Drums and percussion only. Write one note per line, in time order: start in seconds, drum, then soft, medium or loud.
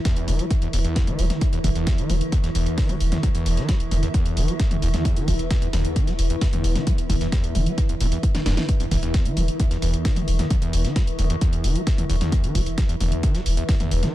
0.05 kick loud
0.05 snare loud
0.05 closed hi-hat medium
0.16 closed hi-hat medium
0.28 closed hi-hat medium
0.28 open hi-hat medium
0.28 mid tom medium
0.39 closed hi-hat medium
0.50 kick loud
0.50 closed hi-hat medium
0.62 closed hi-hat medium
0.73 closed hi-hat medium
0.73 open hi-hat loud
0.85 closed hi-hat soft
0.96 kick loud
0.96 snare loud
0.96 closed hi-hat medium
1.07 closed hi-hat medium
1.07 mid tom loud
1.19 closed hi-hat medium
1.19 open hi-hat medium
1.30 snare medium
1.30 closed hi-hat medium
1.30 mid tom medium
1.41 kick loud
1.41 closed hi-hat medium
1.53 closed hi-hat soft
1.64 kick medium
1.64 closed hi-hat medium
1.64 open hi-hat loud
1.75 closed hi-hat soft
1.87 kick loud
1.87 snare loud
1.87 closed hi-hat medium
1.98 closed hi-hat soft
2.10 closed hi-hat medium
2.10 open hi-hat medium
2.10 mid tom medium
2.21 closed hi-hat medium
2.32 kick loud
2.32 closed hi-hat medium
2.44 snare soft
2.44 closed hi-hat soft
2.55 closed hi-hat medium
2.55 open hi-hat loud
2.66 closed hi-hat soft
2.78 kick loud
2.78 snare loud
2.78 closed hi-hat medium
2.78 open hi-hat medium
2.89 closed hi-hat medium
2.89 mid tom loud
3.00 closed hi-hat medium
3.00 open hi-hat medium
3.12 snare soft
3.12 closed hi-hat medium
3.12 mid tom loud
3.23 kick loud
3.23 closed hi-hat medium
3.35 closed hi-hat soft
3.35 closed hi-hat medium
3.46 closed hi-hat medium
3.46 open hi-hat loud
3.57 snare soft
3.57 closed hi-hat soft
3.69 kick loud
3.69 snare loud
3.69 closed hi-hat medium
3.80 closed hi-hat soft
3.91 closed hi-hat medium
3.91 open hi-hat medium
3.91 mid tom loud
4.03 closed hi-hat medium
4.14 kick loud
4.14 closed hi-hat medium
4.26 closed hi-hat medium
4.37 closed hi-hat medium
4.37 open hi-hat loud
4.48 closed hi-hat soft
4.60 kick loud
4.60 snare loud
4.60 closed hi-hat medium
4.71 closed hi-hat medium
4.71 mid tom loud
4.82 closed hi-hat medium
4.82 open hi-hat medium
4.94 snare medium
4.94 closed hi-hat medium
4.94 mid tom loud
5.05 kick loud
5.05 closed hi-hat medium
5.16 closed hi-hat medium
5.16 closed hi-hat soft
5.28 kick medium
5.28 closed hi-hat medium
5.28 open hi-hat loud
5.39 closed hi-hat medium
5.51 kick loud
5.51 snare loud
5.51 closed hi-hat medium
5.62 closed hi-hat medium
5.73 snare loud
5.73 closed hi-hat medium
5.73 open hi-hat medium
5.73 mid tom medium
5.85 closed hi-hat medium
5.96 kick loud
5.96 closed hi-hat medium
6.07 snare soft
6.07 closed hi-hat medium
6.19 closed hi-hat medium
6.19 open hi-hat loud
6.30 closed hi-hat medium
6.41 kick loud
6.41 snare loud
6.41 closed hi-hat medium
6.41 open hi-hat medium
6.53 closed hi-hat medium
6.53 mid tom loud
6.64 closed hi-hat medium
6.64 open hi-hat medium
6.75 snare soft
6.75 closed hi-hat medium
6.75 mid tom medium
6.87 kick loud
6.87 closed hi-hat medium
6.98 closed hi-hat soft
6.98 closed hi-hat medium
7.10 kick medium
7.10 closed hi-hat medium
7.10 open hi-hat loud
7.10 mid tom medium
7.21 snare soft
7.21 closed hi-hat medium
7.32 kick loud
7.32 snare loud
7.32 closed hi-hat medium
7.44 closed hi-hat medium
7.55 closed hi-hat medium
7.55 open hi-hat medium
7.55 mid tom medium
7.66 closed hi-hat medium
7.78 kick loud
7.78 closed hi-hat medium
7.89 closed hi-hat medium
8.00 closed hi-hat medium
8.00 open hi-hat loud
8.12 closed hi-hat medium
8.23 kick loud
8.23 closed hi-hat medium
8.35 snare medium
8.35 closed hi-hat medium
8.35 mid tom medium
8.46 snare medium
8.46 snare loud
8.46 closed hi-hat medium
8.46 open hi-hat medium
8.57 snare medium
8.57 closed hi-hat medium
8.57 mid tom medium
8.69 kick loud
8.69 closed hi-hat medium
8.80 closed hi-hat medium
8.80 closed hi-hat soft
8.91 kick medium
8.91 closed hi-hat medium
8.91 open hi-hat loud
9.03 closed hi-hat medium
9.14 kick loud
9.14 snare loud
9.14 closed hi-hat medium
9.25 closed hi-hat medium
9.37 closed hi-hat medium
9.37 open hi-hat medium
9.37 mid tom medium
9.48 closed hi-hat medium
9.60 kick loud
9.60 closed hi-hat medium
9.71 snare soft
9.71 closed hi-hat medium
9.82 closed hi-hat medium
9.82 open hi-hat loud
9.94 closed hi-hat medium
10.05 kick loud
10.05 snare loud
10.05 closed hi-hat medium
10.05 open hi-hat medium
10.16 closed hi-hat medium
10.16 mid tom medium
10.28 closed hi-hat medium
10.28 open hi-hat medium
10.39 snare soft
10.39 closed hi-hat medium
10.39 mid tom medium
10.50 kick loud
10.50 closed hi-hat medium
10.62 closed hi-hat medium
10.62 closed hi-hat soft
10.73 closed hi-hat medium
10.73 open hi-hat loud
10.85 snare soft
10.85 closed hi-hat medium
10.96 kick loud
10.96 snare loud
10.96 closed hi-hat medium
11.07 closed hi-hat medium
11.19 closed hi-hat medium
11.19 open hi-hat medium
11.19 mid tom medium
11.30 closed hi-hat medium
11.41 kick loud
11.41 closed hi-hat medium
11.53 closed hi-hat medium
11.64 closed hi-hat medium
11.64 open hi-hat loud
11.76 closed hi-hat medium
11.87 kick loud
11.87 snare loud
11.87 closed hi-hat medium
11.98 closed hi-hat medium
11.98 mid tom medium
12.10 closed hi-hat medium
12.10 open hi-hat medium
12.21 snare medium
12.21 closed hi-hat medium
12.21 mid tom medium
12.32 kick loud
12.32 closed hi-hat medium
12.44 closed hi-hat soft
12.44 closed hi-hat medium
12.55 kick medium
12.55 closed hi-hat medium
12.55 open hi-hat loud
12.66 closed hi-hat medium
12.78 kick loud
12.78 snare loud
12.78 closed hi-hat medium
12.89 closed hi-hat medium
13.00 closed hi-hat medium
13.00 open hi-hat medium
13.00 mid tom medium
13.12 closed hi-hat medium
13.23 kick loud
13.23 closed hi-hat medium
13.35 snare soft
13.35 closed hi-hat medium
13.46 closed hi-hat medium
13.46 open hi-hat loud
13.57 closed hi-hat medium
13.69 kick loud
13.69 snare loud
13.69 closed hi-hat medium
13.69 open hi-hat medium
13.80 closed hi-hat medium
13.80 mid tom medium
13.91 closed hi-hat medium
13.91 open hi-hat loud
14.03 snare soft
14.03 closed hi-hat medium
14.03 mid tom medium